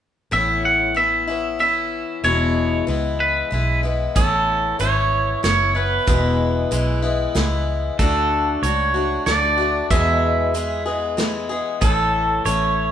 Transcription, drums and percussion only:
4.16 kick, closed hi-hat
4.80 closed hi-hat
5.44 snare, closed hi-hat
6.08 kick, closed hi-hat
6.71 closed hi-hat
7.35 snare, closed hi-hat
7.99 kick, closed hi-hat
8.63 closed hi-hat
9.27 snare, closed hi-hat
9.91 kick, closed hi-hat
10.55 closed hi-hat
11.18 snare, closed hi-hat
11.82 kick, closed hi-hat
12.46 closed hi-hat

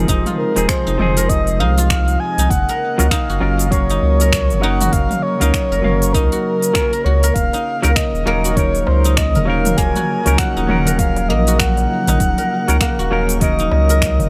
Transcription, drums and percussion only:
0.08 kick, open hi-hat, cabasa
0.26 mid tom, open hi-hat, cabasa
0.56 open hi-hat, cabasa
0.69 finger snap, kick, open hi-hat, cabasa
0.88 cabasa
0.99 mid tom
1.17 open hi-hat, cabasa
1.29 kick, open hi-hat, cabasa
1.47 open hi-hat, cabasa
1.78 open hi-hat, cabasa
1.90 finger snap, kick, open hi-hat, cabasa
2.08 open hi-hat, cabasa
2.38 open hi-hat, cabasa
2.50 kick, open hi-hat, cabasa
2.69 open hi-hat, cabasa
2.99 open hi-hat, cabasa
3.11 finger snap, kick, open hi-hat, cabasa
3.30 cabasa
3.59 open hi-hat, cabasa
3.72 kick, open hi-hat, cabasa
3.90 open hi-hat, cabasa
4.20 open hi-hat, cabasa
4.32 finger snap, kick, open hi-hat, cabasa
4.50 open hi-hat, cabasa
4.81 mid tom, open hi-hat, cabasa
4.93 kick, open hi-hat, cabasa
5.11 mid tom, open hi-hat, cabasa
5.41 open hi-hat, cabasa
5.54 finger snap, kick, open hi-hat, cabasa
5.72 cabasa
5.84 mid tom
6.02 open hi-hat, cabasa
6.14 kick, open hi-hat, cabasa
6.32 open hi-hat, cabasa
6.62 open hi-hat, cabasa
6.75 finger snap, kick, open hi-hat, cabasa
6.93 open hi-hat, cabasa
7.23 open hi-hat, cabasa
7.36 kick, open hi-hat, cabasa
7.53 open hi-hat, darbuka ka, cabasa
7.83 open hi-hat, cabasa
7.96 finger snap, kick, open hi-hat, cabasa
8.15 cabasa
8.44 open hi-hat, cabasa
8.57 kick, open hi-hat, darbuka dum, cabasa
8.75 open hi-hat, cabasa
8.87 darbuka ka, darbuka tek
9.04 open hi-hat, cabasa
9.17 finger snap, kick, open hi-hat, cabasa
9.35 open hi-hat, darbuka dum, cabasa
9.65 mid tom, open hi-hat, cabasa
9.78 kick, open hi-hat, cabasa
9.95 mid tom, open hi-hat, darbuka ka, darbuka tek, cabasa
10.26 open hi-hat, cabasa
10.38 finger snap, kick, open hi-hat, cabasa
10.57 cabasa
10.69 mid tom
10.85 open hi-hat, darbuka dum, cabasa
10.99 kick, open hi-hat, cabasa
11.16 open hi-hat, darbuka tek, cabasa
11.30 darbuka ka
11.47 open hi-hat, cabasa
11.60 finger snap, kick, open hi-hat, cabasa
11.77 open hi-hat, darbuka ka, cabasa
12.07 open hi-hat, darbuka tek, darbuka dum, cabasa
12.20 kick, open hi-hat, cabasa
12.38 open hi-hat, darbuka ka, cabasa
12.68 open hi-hat, cabasa
12.81 finger snap, kick, open hi-hat, cabasa
13.00 cabasa
13.29 open hi-hat, cabasa
13.41 kick, open hi-hat, darbuka dum, cabasa
13.59 open hi-hat, cabasa
13.71 darbuka ka, darbuka tek
13.89 open hi-hat, cabasa
14.02 finger snap, kick, open hi-hat, cabasa
14.20 open hi-hat, darbuka dum, cabasa

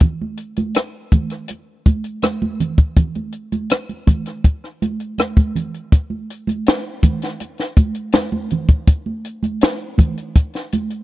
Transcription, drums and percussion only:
0.00 kick, closed hi-hat, muted conga, low conga
0.22 muted conga, high conga
0.37 closed hi-hat
0.56 closed hi-hat, high conga
0.75 cross-stick, closed hi-hat, muted conga
1.12 kick, closed hi-hat, high conga, low conga
1.30 cross-stick, closed hi-hat
1.48 closed hi-hat, muted conga
1.86 kick, closed hi-hat, high conga
2.04 closed hi-hat
2.22 cross-stick, closed hi-hat, muted conga, high conga
2.42 muted conga, high conga
2.60 closed hi-hat, low conga
2.78 kick, closed hi-hat
2.96 kick, closed hi-hat, muted conga, low conga
3.15 closed hi-hat, muted conga, high conga
3.32 closed hi-hat
3.52 closed hi-hat, high conga
3.70 cross-stick, closed hi-hat, muted conga
3.89 closed hi-hat, muted conga
4.07 kick, closed hi-hat, high conga, low conga
4.26 cross-stick, closed hi-hat
4.44 kick, closed hi-hat, muted conga
4.64 cross-stick
4.82 closed hi-hat, high conga
5.00 closed hi-hat
5.18 cross-stick, closed hi-hat, high conga
5.37 kick, closed hi-hat, muted conga, high conga
5.55 closed hi-hat, low conga
5.74 closed hi-hat
5.92 kick, closed hi-hat, muted conga
6.10 high conga
6.30 closed hi-hat
6.47 closed hi-hat, high conga
6.66 snare, closed hi-hat
7.03 kick, closed hi-hat, high conga, low conga
7.22 snare, closed hi-hat
7.40 closed hi-hat, muted conga
7.58 snare, closed hi-hat
7.77 kick, closed hi-hat, high conga
7.95 closed hi-hat
8.12 snare, closed hi-hat, muted conga, high conga
8.32 high conga
8.50 closed hi-hat, low conga
8.69 kick, closed hi-hat
8.87 kick, closed hi-hat, muted conga
9.06 high conga
9.25 closed hi-hat
9.43 closed hi-hat, high conga
9.61 snare, closed hi-hat
9.98 kick, closed hi-hat, high conga, low conga
10.17 closed hi-hat
10.36 kick, closed hi-hat
10.53 snare, closed hi-hat
10.72 closed hi-hat, high conga
10.90 closed hi-hat

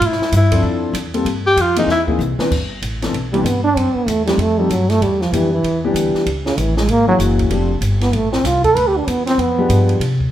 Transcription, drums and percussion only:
0.02 ride
0.12 snare
0.22 snare
0.32 hi-hat pedal, ride
0.52 kick, ride
0.95 hi-hat pedal, ride
1.14 ride
1.26 ride
1.57 hi-hat pedal, ride
1.76 ride
1.89 snare
2.08 kick
2.20 hi-hat pedal
2.39 snare
2.51 kick, crash
2.82 hi-hat pedal, ride
3.02 snare, ride
3.14 ride
3.34 ride
3.46 hi-hat pedal, ride
3.77 ride
4.08 hi-hat pedal, ride
4.27 snare, ride
4.39 ride
4.71 hi-hat pedal, ride
4.90 snare, ride
5.02 ride
5.21 snare
5.33 hi-hat pedal, ride
5.64 ride
5.96 hi-hat pedal, ride
6.15 snare
6.26 ride
6.46 snare
6.58 hi-hat pedal, ride
6.77 snare
6.89 ride
7.20 hi-hat pedal, ride
7.39 kick, ride
7.51 ride
7.82 hi-hat pedal, ride
8.01 snare, ride
8.13 ride
8.33 snare
8.45 snare, hi-hat pedal, ride
8.64 kick, ride
8.77 ride
9.08 hi-hat pedal, ride
9.27 snare, ride
9.39 ride
9.70 hi-hat pedal, ride
9.89 ride
10.01 ride
10.20 kick

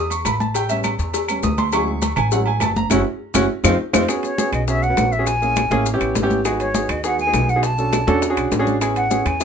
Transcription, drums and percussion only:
0.10 high conga, low agogo, maracas
0.25 cowbell, high conga, low timbale, low agogo, claves, maracas
0.40 high conga, maracas
0.54 cowbell, low agogo, maracas
0.69 high conga, low agogo, maracas
0.84 cowbell, high conga, low timbale, low agogo, claves, maracas
0.99 cowbell, high conga, maracas
1.14 cowbell, high conga, low agogo, maracas
1.28 high conga, low agogo, claves, maracas
1.43 cowbell, high conga, low timbale, maracas
1.58 cowbell, high conga, low agogo, maracas
1.72 cowbell, high conga, low agogo, claves, maracas
1.88 high conga
2.02 cowbell, high conga, low timbale, low agogo, maracas
2.16 high conga, low conga, low agogo, claves, maracas
2.32 cowbell, high conga, maracas
2.46 high conga, low agogo
2.60 cowbell, high conga, low timbale, low agogo, claves, maracas
2.76 high conga, maracas
2.90 cowbell, high conga, high timbale, claves, maracas
3.34 cowbell, high conga, high timbale, claves, maracas
3.64 cowbell, high conga, high timbale, claves, maracas
3.94 cowbell, high conga, high timbale, claves, maracas
4.08 high bongo, high conga, high timbale, claves, maracas
4.23 high conga, high timbale, maracas
4.38 high bongo, high conga, low timbale, maracas
4.53 high conga, high timbale, claves, maracas
4.68 high bongo, high conga, maracas
4.83 high conga, maracas
4.97 high bongo, low bongo, high conga, high timbale, low timbale, claves, maracas
5.12 high conga, maracas
5.27 high bongo, high conga, high timbale, maracas
5.42 high bongo, high conga, maracas
5.56 high bongo, high conga, high timbale, low timbale, claves, maracas
5.71 high conga, high timbale, maracas
5.86 high bongo, high conga, maracas
6.01 high conga, high timbale, claves, maracas
6.15 high bongo, low bongo, high conga, high timbale, low timbale, maracas
6.30 high bongo, high conga, maracas
6.45 high bongo, high conga, high timbale, claves, maracas
6.60 high conga, high timbale, maracas
6.75 high bongo, high conga, low timbale, maracas
6.89 high conga, high timbale, claves, maracas
7.04 high bongo, high conga, maracas
7.19 high conga, maracas
7.34 high bongo, low bongo, high conga, high timbale, low timbale, claves, maracas
7.49 high conga, maracas
7.63 high bongo, high conga, high timbale, maracas
7.78 high bongo, high conga, maracas
7.93 high bongo, high conga, high timbale, low timbale, claves, maracas
8.08 high conga, high timbale, maracas
8.22 high bongo, high conga, maracas
8.37 high bongo, high conga, high timbale, claves, maracas
8.52 high bongo, low bongo, high conga, high timbale, low timbale, maracas
8.67 high bongo, high conga, maracas
8.81 high bongo, high conga, high timbale, claves, maracas
8.96 high conga, high timbale, maracas
9.11 high bongo, high conga, low timbale, maracas
9.26 high conga, high timbale, claves, maracas
9.40 high bongo, high conga, maracas

